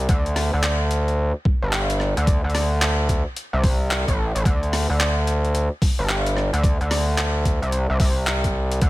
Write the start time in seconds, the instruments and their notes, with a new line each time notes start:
0.09 analog synth bass D2, kick, closed hi-hat
0.26 closed hi-hat
0.36 cross-stick, open hi-hat
0.53 analog synth bass D2
0.63 clap, closed hi-hat
0.91 closed hi-hat
1.08 closed hi-hat
1.45 kick
1.62 analog synth bass G1
1.73 clap, closed hi-hat
1.90 closed hi-hat
2.00 cross-stick
2.17 analog synth bass D2, closed hi-hat
2.27 kick, closed hi-hat
2.44 analog synth bass D2
2.50 closed hi-hat
2.55 cross-stick, open hi-hat
2.82 clap, closed hi-hat
3.09 kick, closed hi-hat
3.36 closed hi-hat
3.53 analog synth bass C2
3.64 kick, open hi-hat
3.91 clap, closed hi-hat
4.08 analog synth bass A1, kick, closed hi-hat
4.35 analog synth bass A1, closed hi-hat
4.45 analog synth bass D2, kick, closed hi-hat
4.63 closed hi-hat
4.73 cross-stick, open hi-hat
4.90 analog synth bass D2
5.00 clap, closed hi-hat
5.27 closed hi-hat
5.45 closed hi-hat
5.55 closed hi-hat
5.82 kick, open hi-hat
5.99 analog synth bass G1
6.09 clap, closed hi-hat
6.26 closed hi-hat
6.37 cross-stick
6.53 analog synth bass D2, closed hi-hat
6.64 kick, closed hi-hat
6.81 analog synth bass D2, closed hi-hat
6.91 cross-stick, open hi-hat
7.18 clap, closed hi-hat
7.45 kick, closed hi-hat
7.62 analog synth bass C2, closed hi-hat
7.72 closed hi-hat
7.90 analog synth bass C2
8.00 analog synth bass C2, kick, open hi-hat
8.27 clap, closed hi-hat
8.44 kick, closed hi-hat
8.72 closed hi-hat
8.81 analog synth bass D2, kick, closed hi-hat